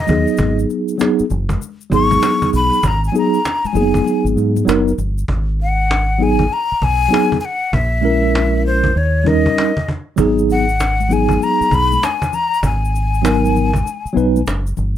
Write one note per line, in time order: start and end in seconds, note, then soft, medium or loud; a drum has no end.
0.00 0.59 D#5 medium
0.07 0.25 D#2 medium
0.07 0.95 F#3 medium
0.07 0.96 B3 medium
0.07 0.96 D#4 medium
0.07 0.97 G#4 medium
0.07 cajon bass medium
0.07 low conga medium
0.07 shaker soft
0.27 shaker soft
0.37 0.64 G#1 loud
0.37 cajon bass loud
0.37 shaker medium
0.59 shaker soft
0.70 cajon slap soft
0.70 shaker soft
0.88 shaker soft
0.98 1.23 F#3 medium
0.98 1.23 B3 medium
0.98 1.24 D#4 medium
0.98 1.25 G#4 medium
0.98 cajon slap loud
0.98 shaker medium
1.19 muted fingered electric bass stroke soft
1.19 shaker soft
1.30 1.56 F#1 medium
1.30 cajon slap soft
1.30 low conga medium
1.30 shaker soft
1.49 cajon bass medium
1.49 high conga medium
1.49 shaker soft
1.61 cajon slap soft
1.61 shaker medium
1.81 shaker soft
1.90 2.17 G#1 medium
1.90 2.78 F#3 medium
1.90 2.79 B3 medium
1.90 2.79 D#4 medium
1.90 2.80 G#4 medium
1.90 cajon bass medium
1.90 shaker soft
1.94 2.50 C#6 loud
2.11 cajon bass medium
2.11 high conga medium
2.11 shaker soft
2.22 cajon slap loud
2.22 shaker medium
2.42 cajon bass loud
2.42 shaker soft
2.53 2.69 B1 loud
2.53 2.89 B5 loud
2.53 low conga medium
2.53 shaker soft
2.73 shaker soft
2.83 3.09 G#1 loud
2.83 cajon bass loud
2.83 shaker medium
2.87 3.05 A#5 medium
3.04 3.15 G#5 medium
3.04 shaker soft
3.12 3.37 F#3 medium
3.12 3.38 B3 medium
3.12 3.38 D#4 medium
3.12 3.39 G#4 medium
3.12 cajon slap soft
3.12 high conga soft
3.12 shaker soft
3.18 3.68 A#5 medium
3.34 shaker soft
3.45 cajon slap loud
3.45 shaker medium
3.65 4.27 G#5 medium
3.65 muted fingered electric bass stroke medium
3.65 cajon slap soft
3.65 high conga medium
3.65 shaker soft
3.73 4.00 F#1 medium
3.73 4.61 F#3 medium
3.73 3.83 A#3 medium
3.73 4.63 D#4 medium
3.73 4.63 G#4 medium
3.73 cajon slap soft
3.73 low conga medium
3.73 shaker soft
3.81 4.65 B3 medium
3.94 cajon bass medium
3.94 high conga medium
3.94 shaker soft
4.07 cajon slap soft
4.07 shaker medium
4.25 4.34 G#1 medium
4.25 high conga soft
4.25 shaker soft
4.36 4.62 G#2 medium
4.36 cajon slap soft
4.36 shaker soft
4.56 high conga medium
4.56 shaker soft
4.65 4.93 F#1 medium
4.65 4.90 F#3 medium
4.65 4.91 B3 medium
4.65 4.91 D#4 medium
4.65 4.92 A#4 medium
4.65 cajon slap loud
4.65 shaker medium
4.87 cajon slap soft
4.87 shaker soft
4.98 5.23 G1 medium
4.98 cajon slap soft
4.98 low conga medium
4.98 shaker medium
5.18 shaker medium
5.28 6.47 G#1 loud
5.28 cajon bass loud
5.60 6.24 F#5 medium
5.60 cajon slap soft
5.91 cajon slap loud
6.18 6.43 F#3 medium
6.18 6.44 B3 medium
6.18 6.44 D#4 medium
6.18 6.45 G#4 medium
6.18 cajon slap soft
6.23 6.55 G#5 medium
6.39 cajon bass medium
6.52 6.85 A#5 loud
6.52 cajon slap soft
6.72 muted fingered electric bass stroke soft
6.82 7.07 B1 medium
6.82 7.39 G#5 loud
6.82 cajon bass medium
7.09 7.34 F#3 medium
7.09 7.35 B3 medium
7.09 7.35 D#4 medium
7.13 7.36 G#4 medium
7.13 cajon slap loud
7.32 cajon bass loud
7.41 7.47 G#5 medium
7.41 cajon slap soft
7.45 7.75 F#5 loud
7.73 8.92 A#1 loud
7.73 8.65 E5 medium
7.73 cajon bass loud
8.01 8.90 G#3 medium
8.01 8.91 C#4 medium
8.01 8.91 E4 medium
8.01 8.92 A#4 medium
8.01 cajon slap soft
8.35 cajon slap loud
8.66 8.99 C5 medium
8.66 cajon slap soft
8.84 cajon bass medium
8.96 9.46 D#2 medium
8.96 9.29 C#5 medium
8.96 cajon slap soft
9.24 9.71 G3 medium
9.24 9.72 C#4 medium
9.24 9.72 D#4 medium
9.24 9.73 A#4 medium
9.24 9.88 D#5 medium
9.24 cajon bass medium
9.24 cajon slap soft
9.46 cajon bass medium
9.58 cajon slap loud
9.77 cajon bass loud
9.88 cajon bass medium
10.16 11.37 G#1 loud
10.16 10.63 F#3 medium
10.16 10.64 B3 medium
10.16 10.65 D#4 medium
10.16 10.65 G#4 medium
10.16 cajon bass loud
10.16 shaker medium
10.39 shaker soft
10.49 11.14 F#5 medium
10.49 cajon slap soft
10.49 shaker soft
10.69 shaker soft
10.80 cajon slap loud
10.80 shaker medium
11.00 high conga medium
11.00 shaker soft
11.09 11.97 F#3 medium
11.09 11.97 B3 medium
11.09 11.98 D#4 medium
11.09 11.99 G#4 medium
11.09 cajon slap soft
11.09 low conga medium
11.09 shaker soft
11.13 11.45 G#5 medium
11.29 cajon bass medium
11.29 high conga medium
11.29 shaker soft
11.41 11.76 A#5 medium
11.41 cajon slap soft
11.41 shaker medium
11.61 muted fingered electric bass stroke soft
11.61 shaker soft
11.71 11.97 B1 medium
11.71 12.06 B5 loud
11.71 cajon bass medium
11.71 shaker soft
11.92 high conga medium
11.92 shaker soft
12.03 12.36 G#5 medium
12.03 cajon slap loud
12.03 shaker medium
12.22 cajon bass loud
12.22 shaker soft
12.33 12.64 A#5 loud
12.33 cajon slap soft
12.33 low conga medium
12.33 shaker soft
12.54 shaker soft
12.63 13.82 G#1 loud
12.63 14.44 G#5 medium
12.63 cajon bass loud
12.63 shaker medium
12.85 shaker soft
12.94 cajon slap soft
12.94 shaker soft
13.14 shaker soft
13.22 13.69 F#3 medium
13.22 13.70 B3 medium
13.22 13.70 D#4 medium
13.22 13.71 A#4 medium
13.22 cajon slap loud
13.22 shaker medium
13.45 high conga medium
13.45 shaker soft
13.55 cajon slap soft
13.55 low conga medium
13.55 shaker soft
13.74 cajon bass medium
13.74 high conga medium
13.74 shaker soft
13.86 cajon slap soft
13.86 shaker medium
14.05 muted fingered electric bass stroke soft
14.05 shaker soft
14.13 14.42 B1 loud
14.13 14.39 F#3 medium
14.13 14.39 B3 medium
14.13 14.40 D#4 medium
14.13 14.41 B4 medium
14.13 cajon slap soft
14.17 shaker soft
14.36 high conga medium
14.36 shaker soft
14.47 14.72 F#1 medium
14.47 cajon slap loud
14.47 shaker medium
14.67 shaker soft
14.77 14.98 G1 medium
14.77 cajon slap soft
14.77 low conga medium
14.77 shaker soft